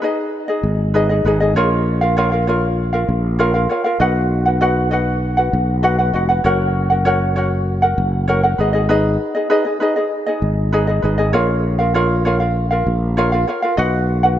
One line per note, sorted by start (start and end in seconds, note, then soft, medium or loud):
0.02 0.48 D#4 medium
0.02 0.48 G#4 medium
0.02 0.48 B4 medium
0.02 0.47 D#5 medium
0.48 0.93 D#4 soft
0.48 0.94 G#4 soft
0.48 0.94 D#5 medium
0.63 1.21 G#1 medium
0.94 1.10 D#4 medium
0.94 1.10 G#4 medium
0.94 1.09 B4 medium
0.94 1.08 D#5 medium
1.09 1.25 D#4 soft
1.09 1.25 G#4 soft
1.09 1.25 D#5 soft
1.25 1.53 G#1 medium
1.25 1.41 D#4 medium
1.25 1.40 G#4 medium
1.25 1.40 B4 soft
1.25 1.39 D#5 medium
1.40 1.56 D#4 soft
1.40 1.56 G#4 soft
1.40 1.55 D#5 medium
1.55 3.04 A#1 medium
1.55 2.02 F4 medium
1.55 2.01 A#4 medium
1.55 2.02 C#5 medium
1.55 2.00 F5 medium
2.01 2.16 F4 soft
2.01 2.17 A#4 soft
2.01 2.17 F5 medium
2.17 2.32 F4 medium
2.17 2.32 A#4 medium
2.17 2.32 C#5 medium
2.17 2.31 F5 medium
2.32 2.47 F4 soft
2.32 2.48 A#4 soft
2.32 2.47 F5 soft
2.47 2.94 F4 medium
2.47 2.93 A#4 medium
2.47 2.93 C#5 medium
2.47 2.92 F5 medium
2.93 3.38 F4 soft
2.93 3.38 A#4 soft
2.93 3.39 F5 soft
3.09 3.66 A#1 medium
3.39 3.54 F4 medium
3.39 3.54 A#4 medium
3.39 3.54 C#5 medium
3.39 3.53 F5 medium
3.54 3.69 F4 soft
3.54 3.70 A#4 soft
3.54 3.69 F5 medium
3.69 3.85 F4 soft
3.69 3.85 A#4 medium
3.69 3.85 C#5 soft
3.69 3.83 F5 medium
3.84 4.00 F4 soft
3.84 4.00 A#4 medium
3.84 4.00 F5 soft
4.00 5.49 B1 medium
4.00 4.46 F#4 medium
4.00 4.46 B4 medium
4.00 4.46 D#5 medium
4.00 4.44 F#5 medium
4.46 4.60 F#4 soft
4.46 4.61 B4 soft
4.46 4.61 F#5 medium
4.61 4.91 F#4 medium
4.61 4.91 B4 medium
4.61 4.90 D#5 medium
4.61 4.92 F#5 medium
4.91 5.38 F#4 medium
4.91 5.37 B4 medium
4.91 5.37 D#5 medium
4.91 5.36 F#5 medium
5.37 5.82 F#4 soft
5.37 5.83 B4 soft
5.37 5.83 F#5 medium
5.53 6.10 B1 medium
5.83 5.99 F#4 medium
5.83 5.98 B4 medium
5.83 5.99 D#5 medium
5.83 5.97 F#5 medium
5.98 6.13 F#4 soft
5.98 6.14 B4 soft
5.98 6.14 F#5 soft
6.13 6.42 F1 medium
6.13 6.30 F#4 medium
6.13 6.29 B4 medium
6.13 6.29 D#5 medium
6.13 6.27 F#5 medium
6.29 6.44 F#4 soft
6.29 6.45 B4 soft
6.29 6.44 F#5 soft
6.44 7.94 F#1 medium
6.44 6.91 F#4 medium
6.44 6.90 A#4 medium
6.44 6.90 C#5 medium
6.44 6.89 F#5 medium
6.90 7.05 F#4 soft
6.90 7.05 A#4 soft
6.90 7.06 F#5 soft
7.05 7.35 F#4 medium
7.05 7.36 A#4 medium
7.05 7.35 C#5 medium
7.05 7.37 F#5 medium
7.36 7.82 F#4 medium
7.36 7.82 A#4 medium
7.36 7.82 C#5 medium
7.36 7.81 F#5 medium
7.82 8.27 F#4 soft
7.82 8.28 A#4 soft
7.82 8.28 F#5 medium
7.98 8.55 F#1 medium
8.28 8.44 F#4 medium
8.28 8.43 A#4 medium
8.28 8.43 C#5 medium
8.28 8.42 F#5 medium
8.43 8.59 F#4 soft
8.43 8.59 A#4 soft
8.43 8.59 F#5 medium
8.58 9.16 G#1 medium
8.58 8.74 D#4 medium
8.58 8.73 G#4 medium
8.58 8.74 B4 soft
8.58 8.72 D#5 medium
8.73 8.88 D#4 soft
8.73 8.89 G#4 medium
8.73 8.89 D#5 medium
8.89 9.35 D#4 medium
8.89 9.35 G#4 medium
8.89 9.35 B4 medium
8.89 9.33 D#5 medium
9.35 9.49 D#4 soft
9.35 9.49 G#4 soft
9.35 9.50 D#5 medium
9.50 9.66 D#4 medium
9.50 9.65 G#4 medium
9.50 9.65 B4 medium
9.50 9.64 D#5 medium
9.65 9.80 D#4 soft
9.65 9.81 G#4 soft
9.65 9.81 D#5 soft
9.80 9.96 D#4 medium
9.80 9.96 G#4 medium
9.80 9.96 B4 medium
9.80 9.95 D#5 medium
9.96 10.28 D#4 soft
9.96 10.27 G#4 soft
9.96 10.25 D#5 soft
10.27 10.72 D#4 soft
10.27 10.73 G#4 medium
10.27 10.73 D#5 medium
10.42 10.99 G#1 medium
10.72 10.88 D#4 medium
10.72 10.88 G#4 medium
10.72 10.88 B4 medium
10.72 10.86 D#5 medium
10.87 11.02 D#4 soft
10.87 11.03 G#4 soft
10.87 11.03 D#5 medium
11.02 11.32 G#1 medium
11.02 11.19 D#4 soft
11.02 11.18 G#4 soft
11.02 11.18 B4 soft
11.02 11.17 D#5 medium
11.18 11.34 D#4 soft
11.18 11.34 G#4 medium
11.18 11.34 D#5 medium
11.33 12.83 A#1 medium
11.33 11.80 F4 medium
11.33 11.79 A#4 medium
11.33 11.79 C#5 medium
11.33 11.77 F5 medium
11.79 11.94 F4 soft
11.79 11.94 A#4 soft
11.79 11.95 F5 medium
11.94 12.25 F4 medium
11.94 12.25 A#4 medium
11.94 12.24 C#5 medium
11.94 12.26 F5 medium
12.25 12.41 F4 medium
12.25 12.40 A#4 medium
12.25 12.41 C#5 medium
12.25 12.39 F5 medium
12.40 12.72 F4 soft
12.40 12.71 A#4 soft
12.40 12.69 F5 soft
12.71 13.16 F4 soft
12.71 13.17 A#4 soft
12.71 13.17 F5 soft
12.87 13.44 A#1 medium
13.17 13.33 F4 medium
13.17 13.32 A#4 medium
13.17 13.32 C#5 medium
13.17 13.31 F5 loud
13.32 13.47 F4 soft
13.32 13.48 A#4 soft
13.32 13.48 F5 soft
13.47 13.63 F4 medium
13.47 13.62 A#4 medium
13.47 13.63 C#5 soft
13.47 13.61 F5 medium
13.62 13.78 F4 soft
13.62 13.78 A#4 soft
13.62 13.78 F5 medium
13.77 14.39 B1 medium
13.77 14.24 F#4 medium
13.77 14.23 B4 medium
13.77 14.24 D#5 medium
13.77 14.22 F#5 medium
14.23 14.38 F#4 soft
14.23 14.38 B4 soft
14.23 14.39 F#5 soft